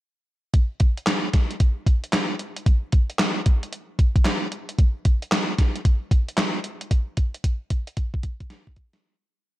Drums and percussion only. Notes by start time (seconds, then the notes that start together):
0.54 kick, closed hi-hat
0.80 kick, closed hi-hat
0.97 closed hi-hat
1.07 snare, clap, closed hi-hat
1.33 kick, snare, closed hi-hat
1.51 closed hi-hat
1.60 kick, closed hi-hat
1.86 kick, closed hi-hat
2.04 closed hi-hat
2.13 snare, clap, closed hi-hat
2.39 closed hi-hat
2.56 closed hi-hat
2.66 kick, closed hi-hat
2.92 kick, closed hi-hat
3.10 closed hi-hat
3.19 snare, clap, closed hi-hat
3.46 kick, closed hi-hat
3.63 closed hi-hat
3.73 closed hi-hat
3.99 kick, closed hi-hat
4.16 kick, closed hi-hat
4.25 snare, clap, closed hi-hat
4.52 closed hi-hat
4.69 closed hi-hat
4.79 kick, closed hi-hat
5.05 kick, closed hi-hat
5.22 closed hi-hat
5.32 snare, clap, closed hi-hat
5.58 kick, snare, closed hi-hat
5.76 closed hi-hat
5.85 kick, closed hi-hat
6.11 kick, closed hi-hat
6.29 closed hi-hat
6.37 snare, clap, closed hi-hat
6.64 closed hi-hat
6.81 closed hi-hat
6.91 kick, closed hi-hat
7.17 kick, closed hi-hat
7.34 closed hi-hat
7.44 kick, closed hi-hat
7.70 kick, closed hi-hat
7.87 closed hi-hat
7.97 kick, closed hi-hat
8.14 kick
8.23 kick, closed hi-hat
8.40 kick, closed hi-hat
8.50 snare, closed hi-hat
8.67 kick
8.76 kick, closed hi-hat
8.93 snare, closed hi-hat